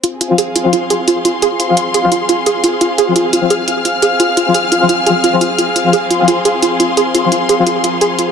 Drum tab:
HH |xxxxxxxx|xxxxxxxx|xxxxxxxx|xxxxxxxx|

HH |xxxxxxxx|xxxxxxxx|